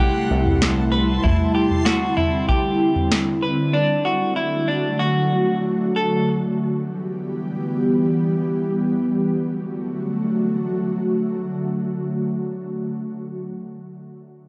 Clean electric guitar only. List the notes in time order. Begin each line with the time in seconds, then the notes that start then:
0.00 G4
0.92 B4
1.24 E4
1.55 G4
1.85 F#4
2.17 E4
2.49 G4
3.42 B4
3.73 D4
4.05 F#4
4.36 E4
4.68 D4
4.99 F#4
5.96 A4